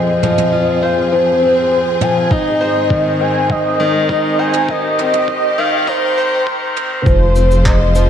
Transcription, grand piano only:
0.00 0.23 F3 medium
0.00 1.42 C4 medium
0.00 0.52 F4 medium
0.00 0.83 C5 medium
0.23 0.51 F3 medium
0.52 0.70 F4 medium
0.83 1.11 C5 medium
1.12 1.29 F3 medium
1.42 1.70 C4 medium
2.01 2.30 F3 medium
2.31 2.48 D#4 medium
2.61 2.89 C5 medium
2.91 3.08 D#3 medium
3.20 3.49 C4 medium
3.80 4.08 D#3 loud
4.09 4.26 D#4 medium
4.39 4.67 C5 medium
4.69 4.86 D#3 medium
4.98 5.27 C4 medium
5.58 5.86 D#3 loud
5.88 6.05 D#4 loud
6.18 6.46 C5 loud
6.47 6.64 D#3 medium
6.76 7.05 C4 medium
7.06 7.23 F3 medium
7.36 7.64 C4 medium
7.95 8.10 F3 medium

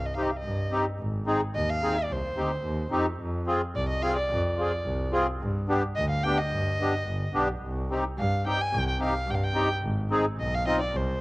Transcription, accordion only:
0.16 0.30 C4 medium
0.16 0.30 D#4 medium
0.16 0.31 G4 medium
0.71 0.85 C4 medium
0.71 0.85 D#4 medium
0.71 0.86 G4 medium
1.26 1.41 C4 medium
1.26 1.41 D#4 medium
1.26 1.41 G#4 medium
1.82 1.96 C4 medium
1.82 1.96 D#4 medium
1.82 1.97 G#4 medium
2.36 2.51 C4 medium
2.36 2.51 D#4 medium
2.36 2.51 G4 medium
2.91 3.06 C4 medium
2.91 3.06 D#4 medium
2.91 3.06 G4 medium
3.47 3.61 C4 medium
3.47 3.61 F4 medium
3.47 3.62 G#4 medium
4.02 4.17 C4 medium
4.02 4.17 F4 medium
4.02 4.17 G#4 medium
4.58 4.72 C4 medium
4.58 4.72 F4 medium
4.58 4.73 G#4 medium
5.12 5.26 C4 medium
5.12 5.27 F4 medium
5.12 5.27 G#4 medium
5.69 5.83 B3 medium
5.69 5.83 D4 medium
5.69 5.83 G4 medium
6.24 6.38 B3 medium
6.24 6.38 D4 medium
6.24 6.39 G4 medium
6.80 6.94 B3 medium
6.80 6.94 D4 medium
6.80 6.94 G4 medium
7.33 7.48 B3 medium
7.33 7.48 D4 medium
7.33 7.48 G4 medium
7.90 8.04 C4 medium
7.90 8.04 D#4 medium
7.90 8.04 G4 medium
8.45 8.59 C4 medium
8.45 8.59 D#4 medium
8.45 8.60 G4 medium
8.99 9.14 C4 medium
8.99 9.14 D#4 medium
8.99 9.14 G4 medium
9.54 9.69 C4 medium
9.54 9.69 D#4 medium
9.54 9.69 G4 medium
10.11 10.25 C4 medium
10.11 10.25 D#4 medium
10.11 10.25 G#4 loud
10.66 10.80 C4 medium
10.66 10.81 D#4 medium
10.66 10.81 F4 medium

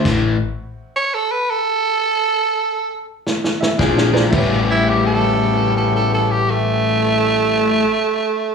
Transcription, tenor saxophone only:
0.96 1.16 C#5 loud
1.14 1.33 A4 medium
1.32 1.52 B4 medium
1.50 3.05 A4 loud
4.71 4.91 E4 medium
4.89 5.05 G4 medium
5.06 5.74 A4 medium
5.77 5.93 A4 medium
5.96 6.12 A4 medium
6.14 6.32 A4 medium
6.31 6.52 G4 medium
6.50 8.55 A3 loud

